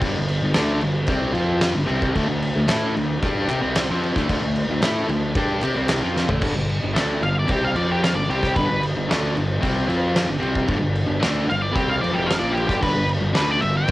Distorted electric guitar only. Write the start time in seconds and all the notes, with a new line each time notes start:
0.02 G2 D3
0.17 G2 D3
0.43 G2 D3
0.54 D3 A3 D4
0.81 G2 D3
1.08 C3 G3 C4
1.33 F3 C4 F4
1.73 G2 D3
1.86 C3 G3 C4
2.14 D3 A3
2.27 D3 A3
2.55 D3 A3
2.68 A3 E4 A4
2.94 D3 A3
3.22 G3 D4 G4
3.49 C4 G4
3.61 C3 G3 C4
3.90 F3 C4 F4
4.17 D3 A3
4.29 D3 A3
4.42 D3 A3
4.70 D3 A3
4.83 A3 E4 A4
5.10 D3 A3
5.36 G3 D4 G4
5.63 C4 G4
5.76 C3 G3 C4
6.02 F3 C4 F4
6.29 D3 A3
6.42 G2 D3
6.55 G2 D3
6.83 G2 D3
6.93 D3 A3 D4
7.20 G2 D3
7.47 C3 G3 C4
7.75 F3 C4 F4
8.15 G2 D3
8.29 C3 G3 C4
8.58 G2 D3
8.70 G2 D3
8.96 G2 D3
9.08 D3 A3 D4
9.34 G2 D3
9.60 C3 G3 C4
9.88 F3 C4 F4
10.27 G2 D3
10.39 C3 G3 C4
10.66 G2 D3
10.78 G2 D3
11.06 G2 D3
11.20 D3 A3 D4
11.47 G2 D3
11.72 C3 G3 C4
11.99 F3 C4
12.11 F2 C3 F3
12.40 A#2 F3 A#3
12.67 G2 D3
12.81 G2 D3
12.94 G2 D3
13.20 G2 D3
13.33 D3 A3 D4
13.61 G2 D3